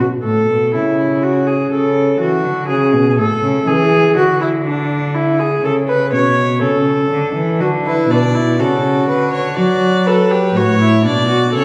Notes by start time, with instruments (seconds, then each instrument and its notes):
0.23 cello A2, viola A4
0.49 cello B2
0.73 cello C#3, viola E4
1.23 viola F#4
1.47 viola G#4
1.71 cello C#3, viola A4
2.20 cello E3, viola F#4
2.44 cello D3
2.68 cello C#3, viola G#4
2.93 cello B2
3.18 cello A2, viola A4
3.42 cello C#3
3.67 cello E3, viola G#4
4.15 cello D3, viola F#4
4.41 viola E4
4.65 viola D4
5.15 viola E4
5.40 viola G#4
5.63 cello C#3, viola A4
5.88 viola B4
6.12 cello B2, viola C#5
6.61 cello C#3, viola A4
7.11 cello D3
7.36 cello E3
7.60 cello D3, viola F#4
7.86 viola E4, violin B4
8.10 cello B2, viola D4, violin D5
8.35 viola E4
8.60 cello C#3, viola F#4, violin A4
9.08 cello D3, violin B4
9.33 violin C#5
9.57 cello F#3, viola F#4, violin D5
10.06 viola A4, violin B4
10.31 viola G4
10.56 cello A2, viola F#4, violin C#5
10.81 viola E4
11.05 cello B2, viola D4, violin D5
11.29 viola F#4
11.53 cello C#3, viola A4, violin C#5